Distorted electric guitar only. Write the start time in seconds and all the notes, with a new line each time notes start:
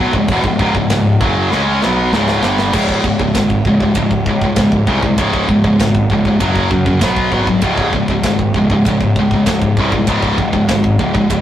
0.00 B2 F#3
0.15 C#2 G#2
0.31 E2 B2
0.45 C#2 G#2
0.60 C#2 G#2
0.75 C#2 G#2
0.91 C#2 G#2
1.21 F#2 C#3 F#3
1.51 C#3 G#3 C#4
1.82 B2 F#3 B3
2.13 C#2 G#2 C#3
2.43 G2 D3 G3
2.73 C#2 G#2 C#3
3.05 C#2 G#2
3.19 C#2 G#2
3.36 C#2 G#2
3.67 C#2 G#2
3.82 C#2 G#2
3.97 C#2 G#2
4.29 C#2 G#2
4.44 C#2 G#2
4.59 C#2 G#2
4.88 C#2 G#2 C#3
5.03 C#2 G#2
5.18 C#2 G#2 C#3
5.49 C#2 G#2
5.64 C#2 G#2
5.80 C#2 G#2
6.11 C#2 G#2
6.27 C#2 G#2
6.40 F#2 C#3 F#3
6.70 F#2 C#3
6.86 F#2 C#3
7.02 B2 F#3 B3
7.33 B2 F#3 B3
7.48 B2 F#3
7.63 C#2 G#2 C#3
7.94 C#2 G#2
8.10 C#2 G#2
8.25 C#2 G#2
8.56 C#2 G#2
8.71 C#2 G#2
8.88 C#2 G#2
9.19 C#2 G#2
9.34 C#2 G#2
9.48 C#2 G#2
9.79 C#2 G#2 C#3
9.94 C#2 G#2
10.09 C#2 G#2 C#3
10.39 C#2 G#2
10.53 C#2 G#2
10.69 C#2 G#2
11.00 C#2 G#2
11.14 C#2 G#2
11.30 C#2 G#2